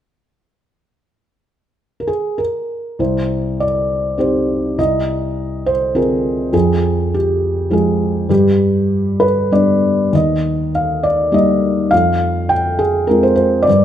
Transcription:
2.00 2.07 A#4 soft
2.07 2.39 G#4 medium
2.38 3.01 A#4 medium
2.99 4.75 C2 soft
2.99 3.62 C5 medium
3.60 4.16 D5 medium
4.18 4.76 C4 soft
4.18 4.76 D#4 soft
4.18 4.76 G4 soft
4.18 4.81 C5 medium
4.78 6.50 C2 soft
4.78 5.69 D#5 medium
5.66 5.96 C5 medium
5.95 6.52 C4 soft
5.95 6.52 F4 soft
5.95 6.52 G#4 soft
5.95 6.56 A#4 medium
6.53 8.25 F2 medium
6.53 7.14 G#4 medium
7.14 7.73 G4 medium
7.70 8.28 F3 soft
7.70 8.28 G#3 soft
7.70 8.28 F4 soft
7.70 8.32 G#4 medium
8.29 10.08 G2 medium
8.29 9.24 G4 medium
9.20 9.52 B4 medium
9.51 10.11 G3 soft
9.51 10.11 B3 soft
9.51 10.11 D4 soft
9.51 10.15 D5 medium
10.12 11.88 D#2 soft
10.12 10.70 D#5 medium
10.75 11.04 F5 medium
11.03 11.34 D5 medium
11.32 11.90 G3 soft
11.32 11.90 A#3 soft
11.32 11.91 D#4 soft
11.32 11.89 D#5 medium
11.91 13.64 F2 soft
11.91 12.52 F5 medium
12.49 12.80 G5 medium
12.79 13.06 G#4 medium
13.07 13.65 G#3 soft
13.07 13.66 C4 soft
13.07 13.66 F4 soft
13.07 13.23 A#4 medium
13.23 13.34 C5 medium
13.36 13.64 C5 medium
13.62 13.85 D5 medium
13.68 13.85 G2 medium

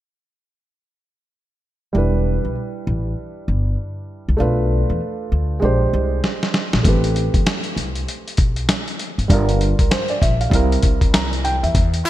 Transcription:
1.93 2.37 E1 medium
1.93 4.35 G3 medium
1.93 4.36 D4 medium
1.93 4.37 E4 soft
1.98 4.37 B4 medium
2.45 2.54 B1 medium
2.87 3.13 A1 medium
3.48 3.74 G1 medium
4.29 4.38 C2 medium
4.37 4.82 B1 medium
4.37 5.58 A3 medium
4.37 5.59 D4 medium
4.37 5.60 F4 medium
4.42 5.61 B4 medium
4.90 4.99 E2 medium
5.32 5.58 D2 medium
5.60 5.88 A#1 medium
5.60 6.81 G#3 medium
5.60 6.82 D4 medium
5.60 6.83 G4 medium
5.65 6.84 C5 medium
5.93 6.19 C2 medium
6.24 snare medium
6.43 snare medium
6.54 snare medium
6.73 6.83 A#1 medium
6.73 snare medium
6.83 7.27 A1 loud
6.83 9.25 A3 medium
6.83 9.26 C4 medium
6.83 9.26 G4 medium
6.83 kick loud
6.83 closed hi-hat medium
6.88 9.27 B4 medium
7.04 closed hi-hat soft
7.16 closed hi-hat medium
7.34 7.44 E2 medium
7.34 kick medium
7.34 closed hi-hat soft
7.46 snare loud
7.46 closed hi-hat medium
7.64 closed hi-hat soft
7.77 8.03 C2 medium
7.77 closed hi-hat medium
7.95 closed hi-hat soft
8.08 closed hi-hat medium
8.28 closed hi-hat soft
8.37 8.64 B1 medium
8.37 kick medium
8.37 closed hi-hat medium
8.56 closed hi-hat soft
8.69 snare medium
8.69 closed hi-hat medium
8.88 closed hi-hat soft
8.99 closed hi-hat medium
9.18 9.28 G#1 medium
9.18 closed hi-hat soft
9.28 9.72 G1 medium
9.28 10.48 G3 medium
9.28 10.50 D4 medium
9.28 10.51 F4 medium
9.28 kick loud
9.28 closed hi-hat medium
9.33 9.62 A#4 medium
9.49 closed hi-hat soft
9.61 closed hi-hat medium
9.79 9.89 C2 medium
9.79 9.91 A#4 medium
9.79 kick medium
9.79 closed hi-hat soft
9.91 10.09 C5 medium
9.91 snare loud
9.91 closed hi-hat medium
10.08 10.21 D5 medium
10.08 closed hi-hat soft
10.22 10.48 A#1 medium
10.22 10.40 E5 medium
10.22 kick medium
10.22 closed hi-hat medium
10.41 10.70 F5 medium
10.41 closed hi-hat soft
10.50 10.78 C2 medium
10.50 11.71 G3 medium
10.50 11.72 C4 medium
10.50 11.73 E4 medium
10.50 kick medium
10.50 closed hi-hat medium
10.55 11.73 A#4 medium
10.72 closed hi-hat soft
10.82 11.59 C2 medium
10.82 kick medium
10.82 closed hi-hat medium
11.01 kick medium
11.01 closed hi-hat soft
11.14 11.43 A#5 medium
11.14 snare medium
11.14 closed hi-hat medium
11.33 closed hi-hat soft
11.44 11.62 G5 medium
11.44 closed hi-hat medium
11.63 11.73 E2 medium
11.63 11.92 E5 medium
11.63 closed hi-hat soft
11.75 12.01 E2 medium
11.75 kick loud
11.75 closed hi-hat medium
11.94 closed hi-hat medium
12.06 closed hi-hat medium

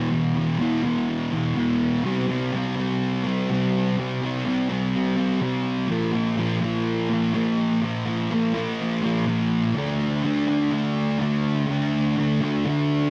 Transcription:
0.00 0.11 B2 loud
0.00 0.13 E3 loud
0.10 0.58 E2 medium
0.10 0.37 B2 loud
0.10 0.34 E3 medium
0.35 0.59 B2 medium
0.35 0.62 E3 medium
0.59 1.08 E2 medium
0.59 0.85 B2 medium
0.59 0.83 E3 medium
0.83 1.34 B2 medium
0.83 1.32 E3 medium
1.32 1.56 B2 medium
1.32 1.58 E3 medium
1.55 2.02 E2 loud
1.55 2.03 B2 medium
1.55 2.05 E3 loud
2.04 2.52 C3 medium
2.04 2.30 G3 loud
2.04 2.27 C4 loud
2.28 2.54 G3 medium
2.28 2.56 C4 medium
2.53 3.49 C3 medium
2.53 2.80 G3 medium
2.53 2.76 C4 medium
2.76 3.26 G3 medium
2.76 3.24 C4 medium
3.24 3.49 G3 medium
3.24 3.52 C4 medium
3.49 3.96 C3 medium
3.49 3.98 G3 medium
3.49 4.00 C4 loud
3.97 4.44 C3 medium
3.97 4.24 G3 medium
3.97 4.21 C4 loud
4.21 4.46 G3 medium
4.21 4.48 C4 medium
4.45 4.94 C3 medium
4.45 4.71 G3 medium
4.45 4.68 C4 medium
4.69 5.18 G3 medium
4.69 5.16 C4 medium
5.16 5.41 G3 medium
5.16 5.43 C4 medium
5.40 5.88 C3 loud
5.40 5.89 G3 loud
5.40 5.91 C4 loud
5.88 6.37 A#2 medium
5.88 6.16 F3 loud
5.88 6.13 A#3 loud
6.13 6.38 F3 medium
6.13 6.40 A#3 medium
6.37 7.33 A#2 medium
6.37 6.64 F3 medium
6.37 6.60 A#3 medium
6.61 7.12 F3 medium
6.61 7.08 A#3 medium
7.10 7.35 F3 medium
7.10 7.35 A#3 medium
7.33 7.81 A#2 medium
7.33 7.82 F3 loud
7.33 7.84 A#3 loud
7.82 8.30 A#2 medium
7.82 8.08 F3 medium
7.82 8.04 A#3 loud
8.05 8.31 F3 medium
8.05 8.33 A#3 medium
8.31 8.79 A#2 medium
8.31 8.56 F3 medium
8.31 8.53 A#3 medium
8.54 9.05 F3 medium
8.54 9.01 A#3 medium
9.03 9.27 F3 medium
9.03 9.28 A#3 medium
9.26 9.74 A#2 loud
9.26 9.75 F3 loud
9.26 9.76 A#3 loud
9.75 10.23 D3 medium
9.75 10.25 A3 medium
9.75 10.26 D4 loud
10.23 10.71 D3 medium
10.23 10.50 A3 medium
10.23 10.47 D4 medium
10.47 10.72 A3 medium
10.47 10.74 D4 medium
10.71 11.18 D3 medium
10.71 11.20 A3 medium
10.71 11.22 D4 loud
11.19 11.67 D3 medium
11.19 11.68 A3 medium
11.19 11.71 D4 medium
11.68 12.15 D3 medium
11.68 12.17 A3 medium
11.68 12.19 D4 medium
12.17 12.64 D3 medium
12.17 12.43 A3 medium
12.17 12.40 D4 medium
12.41 12.66 A3 medium
12.41 12.68 D4 medium
12.65 13.10 D3 loud
12.65 13.10 A3 loud
12.65 13.10 D4 loud

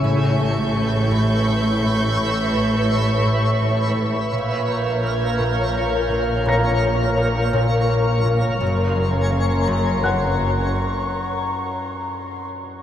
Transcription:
0.00 4.08 A1 soft
0.00 4.08 A2 soft
0.00 1.10 A2 medium
0.00 3.22 C#4 soft
0.00 0.36 C#5 soft
0.00 0.36 E6 soft
0.04 4.33 B4 medium
0.04 4.29 C#5 soft
0.04 4.29 E5 soft
0.04 3.93 C#6 soft
0.04 3.22 G6 soft
0.40 0.75 A3 soft
0.76 1.46 A3 soft
1.11 1.81 A2 medium
1.47 2.52 A3 soft
1.82 2.17 A2 soft
2.18 3.24 A2 soft
2.54 2.88 A3 soft
2.89 3.60 A3 soft
3.25 3.95 A2 soft
3.61 4.35 A3 soft
3.96 4.35 A2 soft
4.32 8.57 A#1 soft
4.32 5.38 A#2 soft
4.32 8.57 A#2 soft
4.32 8.60 A#4 soft
4.32 8.57 C#5 soft
4.32 8.61 F5 soft
4.32 8.21 F6 soft
4.32 7.50 G6 soft
4.32 6.78 G#6 soft
4.68 5.02 A#3 soft
5.03 5.73 A#3 soft
5.39 6.09 A#2 soft
5.74 6.80 A#3 soft
6.10 6.44 A#2 soft
6.46 7.52 A#2 soft
6.46 8.57 A#5 soft
6.46 8.58 A#6 soft
6.81 7.16 A#3 soft
7.17 7.88 A#3 soft
7.53 8.24 A#2 medium
7.89 11.79 A#3 soft
8.25 8.64 A#2 soft
8.60 10.71 F#1 soft
8.60 10.71 F#2 medium
8.60 9.66 F#2 soft
8.60 10.71 A#4 soft
8.60 10.71 C#5 medium
8.60 10.75 G#5 soft
8.60 12.51 A#5 soft
8.60 11.00 C6 soft
8.96 9.31 F#3 soft
9.32 10.03 F#3 soft
9.67 10.38 F#2 soft
10.04 12.83 F#3 soft
10.04 10.71 F#5 soft
10.04 11.00 C#6 soft
10.04 10.71 F#6 soft
10.39 12.83 F#2 soft
11.00 11.79 C#6 soft
11.90 12.50 C6 soft

